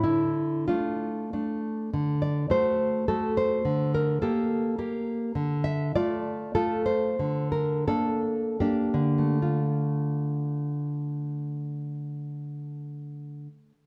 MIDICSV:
0, 0, Header, 1, 2, 480
1, 0, Start_track
1, 0, Key_signature, -1, "minor"
1, 0, Tempo, 627615
1, 36, Time_signature, 3, 2, 24, 8
1, 1476, Tempo, 569801
1, 4356, Tempo, 597610
1, 5316, Tempo, 640342
1, 5796, Tempo, 675676
1, 6276, Tempo, 739827
1, 6756, Tempo, 811908
1, 7236, Tempo, 751880
1, 10079, End_track
2, 0, Start_track
2, 0, Title_t, "Nylon-string guitar"
2, 0, Program_c, 0, 24
2, 27, Note_on_c, 0, 64, 65
2, 33, Note_on_c, 0, 50, 50
2, 504, Note_off_c, 0, 64, 0
2, 511, Note_off_c, 0, 50, 0
2, 518, Note_on_c, 0, 65, 49
2, 524, Note_on_c, 0, 62, 40
2, 529, Note_on_c, 0, 57, 38
2, 1010, Note_off_c, 0, 57, 0
2, 1011, Note_off_c, 0, 62, 0
2, 1019, Note_on_c, 0, 57, 36
2, 1022, Note_on_c, 0, 62, 38
2, 1210, Note_off_c, 0, 65, 0
2, 1450, Note_off_c, 0, 57, 0
2, 1450, Note_off_c, 0, 62, 0
2, 1481, Note_on_c, 0, 50, 50
2, 1720, Note_on_c, 0, 74, 68
2, 1952, Note_off_c, 0, 50, 0
2, 1954, Note_off_c, 0, 74, 0
2, 1955, Note_on_c, 0, 57, 39
2, 1960, Note_on_c, 0, 66, 40
2, 1966, Note_on_c, 0, 72, 67
2, 2426, Note_off_c, 0, 72, 0
2, 2437, Note_off_c, 0, 57, 0
2, 2440, Note_off_c, 0, 66, 0
2, 2446, Note_on_c, 0, 57, 40
2, 2446, Note_on_c, 0, 69, 63
2, 2450, Note_on_c, 0, 66, 43
2, 2678, Note_off_c, 0, 69, 0
2, 2692, Note_on_c, 0, 72, 68
2, 2895, Note_off_c, 0, 57, 0
2, 2897, Note_off_c, 0, 66, 0
2, 2924, Note_on_c, 0, 50, 50
2, 3146, Note_off_c, 0, 72, 0
2, 3174, Note_on_c, 0, 70, 55
2, 3383, Note_off_c, 0, 50, 0
2, 3395, Note_off_c, 0, 70, 0
2, 3403, Note_on_c, 0, 58, 40
2, 3406, Note_on_c, 0, 69, 62
2, 3414, Note_on_c, 0, 67, 41
2, 3860, Note_off_c, 0, 69, 0
2, 3872, Note_off_c, 0, 67, 0
2, 3873, Note_off_c, 0, 58, 0
2, 3882, Note_on_c, 0, 58, 41
2, 3884, Note_on_c, 0, 67, 59
2, 4324, Note_off_c, 0, 58, 0
2, 4339, Note_off_c, 0, 67, 0
2, 4359, Note_on_c, 0, 50, 55
2, 4591, Note_on_c, 0, 76, 75
2, 4815, Note_off_c, 0, 50, 0
2, 4818, Note_off_c, 0, 76, 0
2, 4842, Note_on_c, 0, 57, 42
2, 4843, Note_on_c, 0, 74, 64
2, 4848, Note_on_c, 0, 65, 47
2, 5303, Note_off_c, 0, 74, 0
2, 5311, Note_off_c, 0, 57, 0
2, 5316, Note_off_c, 0, 65, 0
2, 5319, Note_on_c, 0, 57, 45
2, 5320, Note_on_c, 0, 69, 68
2, 5325, Note_on_c, 0, 65, 48
2, 5543, Note_off_c, 0, 69, 0
2, 5551, Note_on_c, 0, 72, 75
2, 5767, Note_off_c, 0, 57, 0
2, 5770, Note_off_c, 0, 65, 0
2, 5803, Note_on_c, 0, 50, 56
2, 6012, Note_off_c, 0, 72, 0
2, 6033, Note_on_c, 0, 70, 58
2, 6265, Note_off_c, 0, 50, 0
2, 6267, Note_off_c, 0, 70, 0
2, 6286, Note_on_c, 0, 58, 41
2, 6287, Note_on_c, 0, 69, 74
2, 6291, Note_on_c, 0, 62, 46
2, 6741, Note_off_c, 0, 69, 0
2, 6751, Note_off_c, 0, 58, 0
2, 6757, Note_off_c, 0, 62, 0
2, 6758, Note_on_c, 0, 58, 39
2, 6758, Note_on_c, 0, 67, 54
2, 6764, Note_on_c, 0, 62, 42
2, 6957, Note_on_c, 0, 50, 47
2, 7101, Note_on_c, 0, 57, 37
2, 7213, Note_off_c, 0, 58, 0
2, 7216, Note_off_c, 0, 62, 0
2, 7216, Note_off_c, 0, 67, 0
2, 7243, Note_on_c, 0, 65, 45
2, 9828, Note_off_c, 0, 50, 0
2, 9983, Note_off_c, 0, 57, 0
2, 10079, Note_off_c, 0, 65, 0
2, 10079, End_track
0, 0, End_of_file